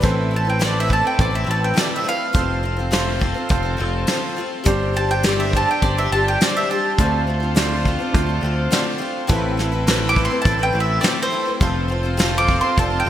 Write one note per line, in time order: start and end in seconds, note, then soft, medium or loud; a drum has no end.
0.01 1.02 A1 medium
0.01 0.31 A2 medium
0.01 0.31 E3 medium
0.01 0.30 A3 medium
0.01 0.30 C4 loud
0.01 0.32 E4 loud
0.01 0.57 A4 loud
0.01 2.33 A4 medium
0.01 0.32 B4 medium
0.01 0.58 B4 medium
0.01 0.58 C5 loud
0.01 kick loud
0.01 closed hi-hat medium
0.05 2.33 C4 medium
0.05 2.33 E4 medium
0.31 0.46 A3 soft
0.31 0.46 C4 soft
0.31 0.45 E4 soft
0.31 0.43 B4 medium
0.36 0.48 A5 medium
0.45 0.59 A3 soft
0.45 0.59 C4 soft
0.45 0.60 E4 medium
0.45 0.60 B4 medium
0.50 0.62 G5 medium
0.59 0.89 A2 medium
0.59 0.89 E3 medium
0.59 0.87 A3 medium
0.59 0.88 C4 medium
0.59 0.90 E4 medium
0.59 1.15 A4 medium
0.59 1.15 B4 medium
0.59 0.90 B4 medium
0.59 1.15 C5 medium
0.59 snare loud
0.59 closed hi-hat medium
0.65 0.76 D5 medium
0.80 0.91 E5 medium
0.88 1.04 A3 medium
0.88 1.03 C4 medium
0.88 1.02 E4 medium
0.88 1.00 B4 medium
0.88 kick medium
0.93 1.05 A5 medium
1.01 1.34 A3 soft
1.01 1.32 C4 soft
1.01 1.31 E4 soft
1.01 1.29 B4 medium
1.07 1.19 G5 medium
1.19 1.43 A1 loud
1.19 1.73 A4 medium
1.19 1.74 B4 medium
1.19 1.74 C5 medium
1.19 1.33 D5 medium
1.19 kick loud
1.19 closed hi-hat medium
1.31 1.45 C4 soft
1.31 1.46 E4 soft
1.31 1.46 B4 soft
1.35 1.43 A3 soft
1.35 1.48 E5 medium
1.44 1.72 A1 medium
1.44 1.75 A3 medium
1.44 1.75 C4 medium
1.44 1.75 E4 medium
1.44 1.76 B4 medium
1.51 1.63 A5 medium
1.64 1.77 G5 medium
1.74 2.04 A2 medium
1.74 2.05 E3 medium
1.74 2.03 A3 medium
1.74 2.04 C4 medium
1.74 2.05 E4 medium
1.74 2.30 A4 medium
1.74 2.06 B4 medium
1.74 2.31 B4 medium
1.74 snare loud
1.74 closed hi-hat medium
1.78 2.32 D5 medium
1.78 1.92 D5 medium
1.96 2.07 E5 medium
2.04 2.33 A3 medium
2.04 2.33 C4 medium
2.04 2.35 E4 medium
2.04 2.35 B4 medium
2.09 3.77 F5 loud
2.33 3.33 F1 medium
2.33 2.63 F3 medium
2.33 2.62 A3 medium
2.33 2.62 C4 medium
2.33 4.65 C4 medium
2.33 2.88 F4 medium
2.33 4.64 F4 medium
2.33 2.64 F4 medium
2.33 2.89 A4 medium
2.33 4.64 A4 medium
2.33 2.64 C5 medium
2.33 2.89 C5 medium
2.33 4.65 C5 medium
2.33 kick loud
2.33 closed hi-hat medium
2.63 2.78 A3 medium
2.63 2.78 C4 medium
2.63 2.78 F4 medium
2.63 2.75 C5 medium
2.77 2.91 C4 soft
2.77 2.92 F4 medium
2.77 2.92 C5 medium
2.91 3.20 F3 medium
2.91 3.18 A3 medium
2.91 3.19 C4 medium
2.91 3.46 F4 medium
2.91 3.20 F4 medium
2.91 3.47 A4 medium
2.91 3.21 C5 medium
2.91 3.47 C5 loud
2.91 snare loud
2.91 closed hi-hat medium
3.19 3.35 A3 medium
3.19 3.35 C4 medium
3.19 3.35 F4 medium
3.19 3.33 C5 medium
3.19 kick medium
3.34 3.65 C4 soft
3.34 3.64 F4 soft
3.34 3.61 C5 medium
3.49 3.75 F1 loud
3.49 4.04 F4 medium
3.49 4.05 A4 medium
3.49 4.05 C5 medium
3.49 kick loud
3.49 closed hi-hat medium
3.63 3.77 C4 soft
3.63 3.78 F4 soft
3.63 3.78 C5 medium
3.77 4.04 F1 medium
3.77 4.07 A3 medium
3.77 4.08 C4 medium
3.77 4.08 F4 medium
3.77 4.09 C5 medium
4.07 4.37 F3 medium
4.07 4.35 A3 medium
4.07 4.37 C4 medium
4.07 4.62 F4 medium
4.07 4.38 F4 medium
4.07 4.62 A4 medium
4.07 4.63 C5 medium
4.07 4.38 C5 medium
4.07 snare loud
4.07 closed hi-hat medium
4.37 4.63 A3 medium
4.37 4.65 C4 medium
4.37 4.66 F4 medium
4.37 4.66 C5 medium
4.64 5.64 G1 medium
4.64 4.92 G3 medium
4.64 6.96 C4 medium
4.64 4.93 D4 medium
4.64 5.20 D4 loud
4.64 6.96 D4 medium
4.64 4.95 G4 medium
4.64 6.95 G4 medium
4.64 5.21 G4 medium
4.64 4.95 C5 loud
4.64 6.96 C5 medium
4.64 kick loud
4.64 closed hi-hat medium
4.68 5.21 C5 loud
4.93 5.09 G3 soft
4.93 5.09 D4 medium
4.93 5.09 G4 medium
4.93 5.08 C5 medium
4.93 5.09 A5 loud
5.09 5.24 D4 soft
5.09 5.25 G4 soft
5.09 5.24 C5 medium
5.09 5.24 G5 medium
5.23 5.52 G3 medium
5.23 5.78 D4 medium
5.23 5.53 D4 medium
5.23 5.78 G4 medium
5.23 5.54 G4 medium
5.23 5.78 C5 medium
5.23 5.54 C5 medium
5.23 snare loud
5.23 closed hi-hat medium
5.29 5.40 D5 medium
5.40 5.53 E5 medium
5.53 5.67 G3 medium
5.53 5.68 D4 medium
5.53 5.68 G4 medium
5.53 5.67 C5 medium
5.53 5.68 A5 loud
5.53 kick medium
5.68 5.98 D4 soft
5.68 5.98 G4 soft
5.68 5.96 C5 medium
5.68 5.83 G5 medium
5.82 6.07 G1 loud
5.82 6.36 D4 medium
5.82 6.37 G4 medium
5.82 6.37 C5 medium
5.82 5.96 D5 medium
5.82 kick medium
5.82 closed hi-hat medium
5.97 6.13 D4 soft
5.97 6.12 G4 soft
5.97 6.11 C5 medium
5.97 6.11 E5 medium
6.11 6.36 G1 medium
6.11 6.40 G3 medium
6.11 6.41 D4 medium
6.11 6.42 G4 medium
6.11 6.25 A5 loud
6.16 6.42 C5 medium
6.28 6.40 G5 loud
6.41 6.69 G3 medium
6.41 6.94 D4 medium
6.41 6.70 D4 medium
6.41 6.94 G4 medium
6.41 6.70 G4 medium
6.41 6.95 C5 medium
6.41 6.71 C5 medium
6.41 6.55 D5 medium
6.41 snare loud
6.41 closed hi-hat medium
6.57 6.69 E5 medium
6.70 6.98 G3 medium
6.70 6.99 D4 medium
6.70 6.99 G4 medium
6.70 6.99 C5 medium
6.70 8.39 A5 medium
6.98 7.96 D2 medium
6.98 7.27 D3 medium
6.98 7.26 A3 medium
6.98 7.27 C4 medium
6.98 7.52 D4 medium
6.98 9.27 D4 medium
6.98 9.28 F4 medium
6.98 7.53 F4 medium
6.98 7.28 F4 medium
6.98 9.27 A4 medium
6.98 9.28 C5 medium
6.98 7.53 C5 medium
6.98 7.28 C5 medium
6.98 kick loud
6.98 closed hi-hat medium
7.27 7.41 A3 soft
7.27 7.42 C4 medium
7.27 7.41 F4 medium
7.27 7.39 C5 medium
7.40 7.56 F4 medium
7.40 7.55 C5 medium
7.44 7.56 C4 medium
7.55 7.84 D3 medium
7.55 7.84 A3 medium
7.55 7.85 C4 medium
7.55 8.10 D4 medium
7.55 8.10 F4 medium
7.55 7.85 F4 medium
7.55 8.10 C5 loud
7.55 7.85 C5 medium
7.55 snare loud
7.55 closed hi-hat medium
7.85 7.99 A3 medium
7.85 7.99 C4 medium
7.85 7.99 F4 medium
7.85 7.97 C5 medium
7.85 kick medium
7.99 8.29 C4 soft
7.99 8.28 F4 medium
7.99 8.25 C5 medium
8.12 8.38 D2 medium
8.12 8.67 D4 medium
8.12 8.68 F4 medium
8.12 8.68 C5 medium
8.12 kick loud
8.12 closed hi-hat medium
8.26 8.41 C4 soft
8.26 8.43 F4 soft
8.26 8.42 C5 medium
8.41 8.67 D2 medium
8.41 8.70 A3 medium
8.41 8.71 C4 medium
8.41 8.71 F4 medium
8.46 8.72 C5 medium
8.71 9.00 D3 medium
8.71 8.97 A3 medium
8.71 8.98 C4 medium
8.71 9.26 D4 medium
8.71 9.26 F4 medium
8.71 8.99 F4 medium
8.71 9.26 C5 medium
8.71 9.00 C5 medium
8.71 snare loud
8.71 closed hi-hat medium
8.98 9.27 A3 medium
8.98 9.28 C4 medium
8.98 9.29 F4 medium
8.98 9.29 C5 medium
9.27 10.28 A1 medium
9.27 9.57 A2 medium
9.27 9.57 E3 medium
9.27 9.56 A3 medium
9.27 9.83 C4 medium
9.27 11.58 C4 medium
9.27 9.57 C4 loud
9.27 11.59 E4 medium
9.27 9.58 E4 medium
9.27 11.59 A4 medium
9.27 9.83 A4 medium
9.27 9.58 B4 loud
9.27 9.84 B4 medium
9.27 kick loud
9.27 closed hi-hat medium
9.57 9.72 A3 medium
9.57 9.72 C4 medium
9.57 9.71 E4 medium
9.57 9.70 B4 medium
9.57 snare soft
9.72 9.87 A3 soft
9.72 9.87 C4 medium
9.72 9.87 E4 medium
9.72 9.87 B4 medium
9.86 10.16 A2 medium
9.86 10.17 E3 medium
9.86 10.14 A3 medium
9.86 10.41 C4 medium
9.86 10.15 C4 loud
9.86 10.17 E4 loud
9.86 10.41 A4 medium
9.86 10.42 B4 loud
9.86 10.17 B4 loud
9.86 snare loud
9.86 closed hi-hat medium
10.09 10.24 D6 loud
10.15 10.30 A3 medium
10.15 10.31 C4 medium
10.15 10.30 E4 medium
10.15 10.29 B4 medium
10.15 kick medium
10.25 10.41 C6 medium
10.30 10.61 A3 soft
10.30 10.60 C4 soft
10.30 10.59 E4 medium
10.30 10.58 B4 soft
10.42 10.70 A1 loud
10.42 10.99 C4 medium
10.42 10.99 A4 medium
10.42 10.62 A5 medium
10.42 kick loud
10.42 closed hi-hat medium
10.46 11.00 B4 medium
10.59 10.71 A3 soft
10.59 10.73 C4 soft
10.59 10.74 E4 soft
10.59 10.74 B4 medium
10.63 10.80 G5 medium
10.73 10.99 A1 medium
10.73 11.01 A3 medium
10.73 11.01 C4 medium
10.73 11.01 E4 medium
10.73 11.02 B4 medium
10.80 11.01 E5 medium
11.01 11.31 A2 medium
11.01 11.32 E3 medium
11.01 11.29 A3 medium
11.01 11.57 C4 medium
11.01 11.30 C4 medium
11.01 11.31 E4 medium
11.01 11.58 A4 medium
11.01 11.32 B4 medium
11.01 11.58 C5 medium
11.01 11.21 D5 medium
11.01 snare loud
11.01 closed hi-hat medium
11.22 11.51 C5 loud
11.30 11.46 A3 medium
11.30 11.46 C4 medium
11.30 11.45 E4 medium
11.30 11.44 B4 medium
11.45 11.60 A3 soft
11.45 11.61 C4 soft
11.45 11.61 E4 medium
11.45 11.61 B4 medium
11.59 12.60 F1 medium
11.59 11.90 F3 medium
11.59 11.87 A3 medium
11.59 13.10 C4 medium
11.59 11.88 C4 medium
11.59 13.10 F4 medium
11.59 12.16 F4 medium
11.59 11.90 F4 medium
11.59 13.10 A4 medium
11.59 12.16 A4 medium
11.59 13.10 C5 medium
11.59 11.91 C5 medium
11.59 12.16 C5 medium
11.59 kick loud
11.59 closed hi-hat medium
11.88 12.04 A3 medium
11.88 12.04 C4 medium
11.88 12.03 F4 medium
11.88 12.02 C5 medium
12.03 12.17 C4 medium
12.03 12.18 F4 medium
12.03 12.18 C5 medium
12.17 12.47 F3 medium
12.17 12.46 A3 loud
12.17 12.47 C4 medium
12.17 12.48 F4 medium
12.17 12.74 F4 medium
12.17 12.74 A4 medium
12.17 12.49 C5 loud
12.17 12.75 C5 loud
12.17 snare loud
12.17 closed hi-hat medium
12.38 12.57 D6 loud
12.47 12.62 A3 medium
12.47 12.63 C4 medium
12.47 12.63 F4 medium
12.47 12.61 C5 medium
12.47 kick medium
12.61 12.91 F4 soft
12.61 12.89 C5 soft
12.61 12.78 C6 medium
12.66 12.93 C4 soft
12.77 13.02 F1 loud
12.77 13.10 F4 medium
12.77 13.10 A4 medium
12.77 13.10 D5 medium
12.77 12.97 A5 medium
12.77 kick loud
12.77 closed hi-hat medium
12.90 13.05 C4 soft
12.90 13.06 F4 soft
12.90 13.06 C5 soft
13.00 13.10 G5 medium
13.05 13.10 F1 loud
13.05 13.10 A3 medium
13.05 13.10 C4 medium